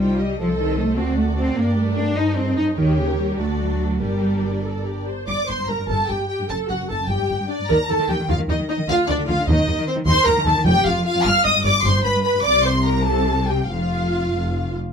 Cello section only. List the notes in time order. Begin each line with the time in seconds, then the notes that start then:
Already playing: G3
0.40 F3
0.60 D#3
0.78 A3
0.98 C4
1.18 A3
1.38 C4
1.57 A#3
1.77 A3
1.98 D4
2.17 D#4
2.37 C4
2.57 D#4
2.77 D#3
2.98 C#3
3.18 G3
3.39 A3
3.60 F#3
4.02 G3
5.28 G2
5.48 G2
5.58 G2
5.68 G2
5.78 G2
5.88 G2
5.99 G2
6.09 G2
6.19 G2
6.40 G2
6.50 F#2
6.70 F#2
6.81 F#2
6.91 F#2
7.00 F#2
7.11 G2
7.20 G2
7.30 G2
7.40 G2
7.60 G2
7.70 D#3
7.90 D#3
7.99 D#3
8.10 D#3
8.19 D#3
8.29 D#3
8.39 D#3
8.49 D#3
8.59 D#3
8.78 D#3
8.89 D3
9.09 D3
9.18 D3
9.28 D3
9.38 D3
9.48 D#3
9.58 D#3
9.68 D#3
9.78 D#3
9.96 D#3
10.07 D#3
10.26 D#3
10.36 D#3
10.46 D#3
10.56 D#3
10.66 F2
10.76 F2
10.86 F2
10.96 F2
11.16 F2
11.25 G2
11.45 G2
11.55 G2
11.65 G2
11.76 G2
11.85 G2
11.96 G2
12.05 G2
12.15 G2
12.35 G2
12.45 C3
13.70 F2
14.33 F2